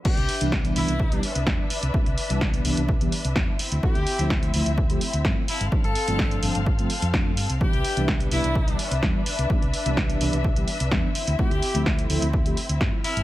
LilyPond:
<<
  \new Staff \with { instrumentName = "String section" } { \time 4/4 \key c \major \tempo 4 = 127 << { e''1~ | e''2.~ e''8 e''8~ | e''2.~ e''8 f''8~ | f''1 |
e''1~ | e''1~ | e''2.~ e''8 f'''8 | } \\ { <d' b'>1~ | <d' b'>2.~ <d' b'>8 <c' e'>8~ | <c' e'>2.~ <c' e'>8 <c' a'>8~ | <c' a'>1 |
<d' b'>1~ | <d' b'>2.~ <d' b'>8 <c' e'>8~ | <c' e'>2.~ <c' e'>8 <c' a'>8 | } >> }
  \new Staff \with { instrumentName = "Horn section" } { \time 4/4 \key c \major g'4 r8 e'4. r4 | r1 | g'4 r2 r8 e'8 | r16 a'4. r2 r16 |
g'4 r8 e'4. r4 | r1 | g'4 r2 r8 e'8 | }
  \new Staff \with { instrumentName = "Analog polysynth" } { \time 4/4 \key c \major <e g b d'>16 r8 <e g b d'>8. <e g b d'>16 r8 <e g b g'>16 r8 <e g b d'>16 r8. | <e g b d'>16 r8 <e g b d'>8. <e g b d'>16 r8 <e g b g'>16 r8 <e g b d'>16 r8. | <f a c' e'>16 r8 <f a c' e'>8. <f a c' e'>16 r8 <f a c' g'>16 r8 <f a c' e'>16 r8. | <f a c' d'>16 r8 <f a c' d'>8. <f a c' d'>16 r8 <f a c' f'>16 r8 <f a c' d'>16 r8. |
<e g b d'>16 r8 <e g b d'>8. <e g b d'>16 r8 <e g b g'>16 r8 <e g b d'>16 r8. | <e g b d'>16 r8 <e g b d'>8. <e g b d'>16 r8 <e g b g'>16 r8 <e g b d'>16 r8. | <f a c' e'>16 r8 <f a c' e'>8. <f a c' e'>16 r8 <f a c' g'>16 r8 <f a c' e'>16 r8. | }
  \new Staff \with { instrumentName = "Fingered electric bass" } { \clef bass \time 4/4 \key c \major r16 c,16 r16 c,8. c,16 c,8. r16 c,16 r8. c,16 | r16 c,16 r16 c,8. c,16 c,8. r16 c,16 r8. d,16 | r16 d,16 r16 d,8. d,16 d,8. r16 d,16 r8. g,,16 | r16 g,,16 r16 g,,8. g,,16 g,,8. r16 f,8. g,16 c,16 |
r16 c,16 r16 c,8. c,16 c,8. r16 c,16 r8. c,16 | r16 c,16 r16 c,8. c,16 c,8. r16 c,16 r8. d,16 | r16 d,16 r16 d,8. d,16 d,8. r16 d,16 g,16 r8 g,,16 | }
  \new DrumStaff \with { instrumentName = "Drums" } \drummode { \time 4/4 <cymc bd>16 hh16 hho16 hh16 <bd sn>16 hh16 hho16 hh16 bd16 hh16 hho16 hh16 <bd sn>8 hho16 hh16 | bd16 hh16 hho16 hh16 <bd sn>16 hh16 hho16 hh16 bd16 hh16 hho16 hh16 <bd sn>8 hho16 hh16 | bd16 hh16 hho16 hh16 <bd sn>16 hh16 hho16 hh16 bd16 hh16 hho16 hh16 <bd sn>8 hho16 hh16 | bd16 hh16 hho16 hh16 <bd sn>16 hh16 hho16 hh16 bd16 hh16 hho16 hh16 <bd sn>8 hho16 hh16 |
bd16 hh16 hho16 hh16 <bd sn>16 hh16 hho16 hh16 bd16 hh16 hho16 hh16 <bd sn>8 hho16 hh16 | bd16 hh16 hho16 hh16 <bd sn>16 hh16 hho16 hh16 bd16 hh16 hho16 hh16 <bd sn>8 hho16 hh16 | bd16 hh16 hho16 hh16 <bd sn>16 hh16 hho16 hh16 bd16 hh16 hho16 hh16 <bd sn>8 hho16 hh16 | }
>>